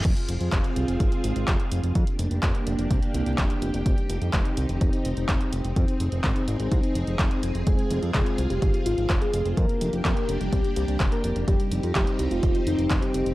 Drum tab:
CC |x---------------|----------------|----------------|----------------|
HH |xxxxxxxxxxxxxxxx|xxxxxxxxxxxxxxxx|xxxxxxxxxxxxxxxx|xxxxxxxxxxxxxxxx|
CP |----x-------x---|----x-------x---|----x-------x---|----x-------x---|
BD |o---o---o---o---|o---o---o---o---|o---o---o---o---|o---o---o---o---|

CC |----------------|----------------|----------------|
HH |xxxxxxxxxxxxxxxx|xxxxxxxxxxxxxxxx|xxxxxxxxxxxxxxxx|
CP |----x-------x---|----x-------x---|----x-------x---|
BD |o---o---o---o---|o---o---o---o---|o---o---o---o---|